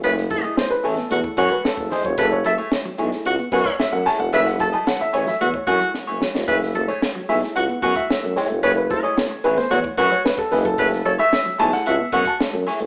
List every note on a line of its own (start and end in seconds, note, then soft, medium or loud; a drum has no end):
0.03 0.27 F#1 loud
0.03 0.25 A3 medium
0.03 0.17 E4 medium
0.03 0.16 G#4 medium
0.03 0.12 B4 loud
0.03 0.15 C#5 loud
0.03 closed hi-hat medium
0.16 muted clean electric guitar stroke soft
0.16 snare soft
0.16 closed hi-hat soft
0.30 0.42 F#1 medium
0.30 0.40 F#3 medium
0.30 1.07 G#3 medium
0.30 1.07 A3 medium
0.30 1.07 E4 medium
0.30 0.41 A4 medium
0.30 muted clean electric guitar stroke soft
0.30 kick medium
0.30 closed hi-hat medium
0.43 0.53 A3 medium
0.43 0.56 A3 soft
0.43 0.56 E4 medium
0.43 0.56 G#4 soft
0.43 0.57 D#5 medium
0.43 closed hi-hat soft
0.57 0.66 B3 medium
0.57 0.71 C5 medium
0.57 snare loud
0.70 0.76 A1 medium
0.70 0.84 B4 medium
0.70 muted clean electric guitar stroke soft
0.70 closed hi-hat soft
0.83 0.96 A1 loud
0.83 1.05 A3 medium
0.83 0.97 E4 medium
0.83 0.96 G#4 medium
0.83 1.39 A4 medium
0.83 0.96 C#5 loud
0.83 open hi-hat soft
0.97 1.07 B3 medium
0.97 muted clean electric guitar stroke medium
0.97 snare soft
0.97 closed hi-hat medium
1.10 1.23 E2 loud
1.10 1.35 G#3 soft
1.10 1.20 A3 loud
1.10 1.35 A3 soft
1.10 1.35 E4 soft
1.10 1.19 F#4 loud
1.10 muted clean electric guitar stroke soft
1.10 closed hi-hat medium
1.24 muted clean electric guitar stroke soft
1.24 kick medium
1.37 1.49 F#2 loud
1.37 1.59 A3 medium
1.37 1.50 E4 medium
1.37 1.59 F#4 loud
1.37 1.50 G#4 medium
1.37 1.52 C#5 medium
1.37 1.49 C#5 loud
1.37 kick medium
1.37 closed hi-hat medium
1.50 1.60 F#3 medium
1.50 1.65 B4 medium
1.50 muted clean electric guitar stroke soft
1.50 closed hi-hat medium
1.64 1.70 F#1 soft
1.64 1.90 A4 medium
1.64 muted clean electric guitar stroke soft
1.64 snare loud
1.77 1.89 F#1 medium
1.77 kick medium
1.77 closed hi-hat soft
1.91 2.00 E3 medium
1.91 2.08 A3 medium
1.91 2.04 E4 medium
1.91 2.03 G#4 medium
1.91 2.05 C5 medium
1.91 2.04 D#5 medium
1.91 snare soft
1.91 open hi-hat medium
2.04 2.16 F1 loud
2.04 2.14 F#3 medium
2.04 2.19 C#5 medium
2.04 muted clean electric guitar stroke soft
2.04 kick medium
2.04 closed hi-hat soft
2.17 2.41 F#1 loud
2.17 2.39 A3 medium
2.17 2.31 E4 medium
2.17 2.31 G#4 loud
2.17 2.32 A4 loud
2.17 2.26 B4 loud
2.17 2.30 C#5 medium
2.17 kick loud
2.17 closed hi-hat medium
2.31 2.46 C#5 medium
2.31 muted clean electric guitar stroke soft
2.31 closed hi-hat soft
2.44 2.56 F#1 medium
2.44 2.54 F#3 medium
2.44 2.53 A4 medium
2.44 2.52 E5 loud
2.44 muted clean electric guitar stroke soft
2.44 closed hi-hat medium
2.58 2.68 A3 medium
2.58 2.71 A3 medium
2.58 2.71 E4 medium
2.58 2.72 G#4 soft
2.58 2.72 C#5 medium
2.58 closed hi-hat soft
2.72 muted clean electric guitar stroke soft
2.72 snare loud
2.85 2.91 B1 soft
2.85 2.95 F#3 medium
2.85 muted clean electric guitar stroke medium
2.85 closed hi-hat soft
2.98 3.10 B1 medium
2.98 3.34 G#3 medium
2.98 3.20 A3 medium
2.98 3.08 A3 medium
2.98 3.34 A3 medium
2.98 3.11 E4 medium
2.98 3.35 E4 medium
2.98 3.11 G#4 medium
2.98 3.11 C#5 medium
2.98 closed hi-hat medium
3.12 muted clean electric guitar stroke soft
3.12 snare soft
3.12 closed hi-hat medium
3.25 3.37 C#2 loud
3.25 3.34 F#4 loud
3.25 muted clean electric guitar stroke soft
3.25 closed hi-hat medium
3.39 3.48 B3 medium
3.39 muted clean electric guitar stroke soft
3.39 closed hi-hat soft
3.52 3.64 F#2 loud
3.52 3.74 A3 medium
3.52 3.62 B3 medium
3.52 3.65 E4 loud
3.52 3.74 F#4 loud
3.52 3.65 G#4 medium
3.52 3.66 B4 medium
3.52 3.64 C#5 loud
3.52 kick medium
3.52 closed hi-hat medium
3.65 3.80 C#5 medium
3.65 muted clean electric guitar stroke soft
3.65 kick medium
3.65 closed hi-hat medium
3.79 3.93 E5 medium
3.79 muted clean electric guitar stroke medium
3.79 snare loud
3.92 4.04 F#2 loud
3.92 4.02 A3 medium
3.92 4.06 F#5 loud
3.92 muted clean electric guitar stroke soft
3.92 closed hi-hat soft
4.06 4.27 A3 medium
4.06 4.19 E4 medium
4.06 4.19 G#4 medium
4.06 4.18 C#5 loud
4.06 4.19 A5 loud
4.06 muted clean electric guitar stroke soft
4.06 snare soft
4.06 open hi-hat medium
4.19 4.31 F1 medium
4.19 4.29 A3 medium
4.19 4.33 F#5 loud
4.19 muted clean electric guitar stroke medium
4.19 closed hi-hat soft
4.32 4.56 F#1 loud
4.32 5.09 G#3 medium
4.32 4.54 A3 medium
4.32 5.10 A3 medium
4.32 4.47 E4 medium
4.32 5.10 E4 medium
4.32 4.46 G#4 medium
4.32 4.41 B4 loud
4.32 4.46 C#5 medium
4.32 4.47 E5 loud
4.32 closed hi-hat medium
4.46 4.60 F#5 medium
4.46 muted clean electric guitar stroke soft
4.46 snare soft
4.46 closed hi-hat soft
4.59 4.72 F#1 medium
4.59 4.69 F#3 medium
4.59 4.68 A4 medium
4.59 4.72 A5 medium
4.59 muted clean electric guitar stroke soft
4.59 kick medium
4.59 closed hi-hat medium
4.72 4.83 F#3 medium
4.72 4.85 A3 soft
4.72 4.85 E4 soft
4.72 4.85 G#4 medium
4.72 4.86 D#5 medium
4.72 4.87 A5 medium
4.72 closed hi-hat soft
4.86 4.96 E3 medium
4.86 5.01 F#5 loud
4.86 muted clean electric guitar stroke soft
4.86 snare loud
4.99 5.06 A1 medium
4.99 5.14 E5 medium
4.99 muted clean electric guitar stroke soft
4.99 closed hi-hat soft
5.13 5.26 A1 medium
5.13 5.35 A3 medium
5.13 5.26 E4 medium
5.13 5.26 G#4 medium
5.13 5.25 C#5 loud
5.13 5.28 C#5 medium
5.13 closed hi-hat medium
5.26 5.36 F#3 medium
5.26 5.55 E5 medium
5.26 muted clean electric guitar stroke soft
5.26 snare soft
5.26 closed hi-hat medium
5.40 5.52 E2 medium
5.40 5.50 A3 medium
5.40 5.49 F#4 loud
5.40 muted clean electric guitar stroke soft
5.40 closed hi-hat medium
5.53 6.04 C#5 medium
5.53 muted clean electric guitar stroke soft
5.53 kick medium
5.53 closed hi-hat soft
5.67 5.79 F#2 medium
5.67 5.92 G#3 soft
5.67 5.89 A3 medium
5.67 5.92 A3 soft
5.67 5.81 E4 medium
5.67 5.92 E4 medium
5.67 5.88 F#4 loud
5.67 5.80 G#4 medium
5.67 5.80 C#5 medium
5.67 kick medium
5.67 closed hi-hat medium
5.81 5.90 F#3 medium
5.81 muted clean electric guitar stroke soft
5.81 closed hi-hat medium
5.94 6.00 F#1 soft
5.94 muted clean electric guitar stroke soft
5.94 snare medium
6.07 6.19 F#1 medium
6.07 6.20 A3 medium
6.07 6.20 E4 medium
6.07 6.21 G#4 medium
6.07 6.21 C#5 medium
6.21 6.30 F#3 medium
6.21 muted clean electric guitar stroke soft
6.21 snare loud
6.35 6.46 F1 medium
6.35 6.44 A3 medium
6.35 muted clean electric guitar stroke soft
6.35 snare medium
6.48 6.71 F#1 loud
6.48 6.69 A3 medium
6.48 6.62 E4 medium
6.48 6.61 G#4 loud
6.48 6.56 B4 loud
6.48 6.60 C#5 medium
6.48 6.89 E5 medium
6.48 kick loud
6.48 closed hi-hat medium
6.61 muted clean electric guitar stroke soft
6.61 snare soft
6.61 closed hi-hat soft
6.75 6.87 F#1 medium
6.75 6.84 F#3 medium
6.75 6.83 A4 medium
6.75 muted clean electric guitar stroke soft
6.75 closed hi-hat medium
6.88 6.98 A3 medium
6.88 7.01 A3 soft
6.88 7.01 E4 soft
6.88 7.01 G#4 medium
6.88 7.30 C#5 medium
6.88 7.02 C#5 medium
6.88 closed hi-hat soft
7.02 muted clean electric guitar stroke soft
7.02 snare loud
7.15 7.21 B1 medium
7.15 7.25 F#3 medium
7.15 muted clean electric guitar stroke medium
7.15 closed hi-hat soft
7.28 7.40 B1 medium
7.28 8.35 G#3 medium
7.28 7.50 A3 medium
7.28 8.35 A3 medium
7.28 7.39 A3 medium
7.28 7.42 E4 medium
7.28 8.35 E4 medium
7.28 7.41 G#4 medium
7.28 7.41 C#5 medium
7.28 7.35 E5 medium
7.28 open hi-hat soft
7.42 muted clean electric guitar stroke soft
7.42 snare soft
7.42 closed hi-hat medium
7.56 7.67 C#2 medium
7.56 7.64 F#4 loud
7.56 7.97 F#5 medium
7.56 muted clean electric guitar stroke soft
7.56 closed hi-hat loud
7.69 7.78 B3 medium
7.69 muted clean electric guitar stroke soft
7.69 closed hi-hat soft
7.82 7.94 F#2 medium
7.82 8.04 A3 medium
7.82 7.92 B3 medium
7.82 7.96 E4 loud
7.82 8.04 F#4 loud
7.82 7.96 G#4 loud
7.82 7.95 C#5 loud
7.82 kick medium
7.82 closed hi-hat medium
7.96 8.37 E5 medium
7.96 muted clean electric guitar stroke soft
7.96 kick loud
7.96 closed hi-hat medium
8.10 muted clean electric guitar stroke medium
8.10 snare loud
8.23 8.35 F#2 medium
8.23 8.32 A3 medium
8.23 muted clean electric guitar stroke soft
8.23 closed hi-hat soft
8.36 8.60 G#3 soft
8.36 8.61 A3 soft
8.36 8.58 A3 medium
8.36 8.61 E4 medium
8.36 8.50 E4 medium
8.36 8.49 G#4 loud
8.36 8.61 C#5 medium
8.36 8.48 C#5 loud
8.36 muted clean electric guitar stroke soft
8.36 snare soft
8.36 open hi-hat medium
8.50 8.61 F1 medium
8.50 8.60 A3 medium
8.50 muted clean electric guitar stroke soft
8.50 closed hi-hat medium
8.63 8.87 F#1 loud
8.63 8.85 A3 medium
8.63 8.77 E4 medium
8.63 8.76 G#4 loud
8.63 8.71 B4 loud
8.63 8.68 C#5 loud
8.63 8.76 C#5 loud
8.63 closed hi-hat medium
8.77 8.89 B4 medium
8.77 muted clean electric guitar stroke soft
8.77 closed hi-hat soft
8.89 9.02 F#1 medium
8.89 8.99 F#3 medium
8.89 9.26 G#3 medium
8.89 9.26 A3 medium
8.89 9.26 E4 medium
8.89 9.01 A4 medium
8.89 8.95 C5 medium
8.89 muted clean electric guitar stroke soft
8.89 kick medium
8.89 closed hi-hat medium
9.03 9.13 A3 medium
9.03 9.15 A3 soft
9.03 9.16 E4 soft
9.03 9.16 G#4 medium
9.03 9.45 C#5 medium
9.03 9.18 D#5 medium
9.03 closed hi-hat soft
9.17 9.27 B3 medium
9.17 muted clean electric guitar stroke soft
9.17 snare loud
9.31 9.37 A1 soft
9.31 muted clean electric guitar stroke medium
9.31 closed hi-hat soft
9.44 9.56 A1 loud
9.44 9.66 A3 medium
9.44 9.58 E4 medium
9.44 9.57 G#4 loud
9.44 9.58 B4 loud
9.44 9.57 C#5 loud
9.44 closed hi-hat medium
9.57 9.67 B3 medium
9.57 9.71 C5 medium
9.57 muted clean electric guitar stroke medium
9.57 snare soft
9.57 closed hi-hat medium
9.70 9.83 E2 loud
9.70 9.80 A3 loud
9.70 9.79 F#4 loud
9.70 9.96 C#5 medium
9.70 closed hi-hat medium
9.84 muted clean electric guitar stroke soft
9.84 kick medium
9.84 closed hi-hat soft
9.97 10.09 F#2 loud
9.97 10.20 A3 medium
9.97 10.11 E4 loud
9.97 10.19 F#4 loud
9.97 10.11 G#4 loud
9.97 10.12 B4 medium
9.97 10.10 C#5 loud
9.97 kick medium
9.97 closed hi-hat medium
10.11 10.21 F#3 medium
10.11 10.25 C#5 medium
10.11 muted clean electric guitar stroke soft
10.11 closed hi-hat medium
10.25 10.39 B4 medium
10.25 muted clean electric guitar stroke soft
10.25 snare loud
10.38 10.52 A4 loud
10.38 kick medium
10.38 closed hi-hat soft
10.51 10.75 F#1 loud
10.51 10.61 E3 medium
10.51 10.69 A3 medium
10.51 10.65 E4 medium
10.51 10.64 G#4 medium
10.51 10.64 B4 medium
10.51 10.64 D#5 medium
10.51 snare soft
10.51 open hi-hat medium
10.65 10.74 F#3 medium
10.65 11.07 A4 loud
10.65 muted clean electric guitar stroke soft
10.65 kick medium
10.65 closed hi-hat soft
10.78 11.02 F#1 loud
10.78 11.00 A3 medium
10.78 10.92 E4 medium
10.78 10.91 G#4 loud
10.78 10.87 B4 loud
10.78 10.91 C#5 loud
10.78 kick loud
10.78 closed hi-hat medium
10.92 muted clean electric guitar stroke soft
10.92 snare soft
10.92 closed hi-hat soft
11.05 11.17 F#1 medium
11.05 11.15 F#3 medium
11.05 11.13 A4 medium
11.05 11.11 C#5 medium
11.05 muted clean electric guitar stroke soft
11.05 closed hi-hat medium
11.18 11.28 A3 medium
11.18 11.30 A3 medium
11.18 11.31 E4 medium
11.18 11.32 G#4 medium
11.18 11.32 C#5 medium
11.18 11.57 E5 loud
11.18 closed hi-hat soft
11.32 muted clean electric guitar stroke soft
11.32 snare loud
11.45 11.51 B1 medium
11.45 11.55 F#3 medium
11.45 muted clean electric guitar stroke soft
11.45 closed hi-hat soft
11.58 11.71 B1 medium
11.58 11.94 G#3 medium
11.58 11.80 A3 loud
11.58 11.95 A3 medium
11.58 11.69 A3 medium
11.58 11.72 E4 medium
11.58 11.95 E4 medium
11.58 11.72 G#4 loud
11.58 11.71 C#5 medium
11.58 11.72 A5 loud
11.58 closed hi-hat medium
11.72 11.87 F#5 loud
11.72 muted clean electric guitar stroke soft
11.72 snare soft
11.72 closed hi-hat medium
11.86 11.98 C#2 loud
11.86 11.94 F#4 loud
11.86 12.14 E5 medium
11.86 muted clean electric guitar stroke soft
11.86 closed hi-hat medium
12.00 12.09 B3 medium
12.00 muted clean electric guitar stroke soft
12.12 12.24 F#2 loud
12.12 12.34 A3 medium
12.12 12.23 B3 medium
12.12 12.25 E4 medium
12.12 12.34 F#4 loud
12.12 12.25 G#4 loud
12.12 12.25 C#5 loud
12.12 12.27 F#5 loud
12.12 kick medium
12.12 closed hi-hat medium
12.25 12.52 A5 medium
12.25 muted clean electric guitar stroke soft
12.25 kick medium
12.25 closed hi-hat medium
12.39 muted clean electric guitar stroke soft
12.39 snare loud
12.53 12.65 F#2 medium
12.53 12.63 A3 medium
12.53 muted clean electric guitar stroke soft
12.53 closed hi-hat soft
12.67 12.86 A3 medium
12.67 12.80 E4 loud
12.67 12.80 G#4 medium
12.67 12.79 C#5 loud
12.67 muted clean electric guitar stroke soft
12.67 snare soft
12.67 open hi-hat medium
12.80 12.86 F1 medium
12.80 12.86 A3 medium
12.80 muted clean electric guitar stroke soft
12.80 closed hi-hat soft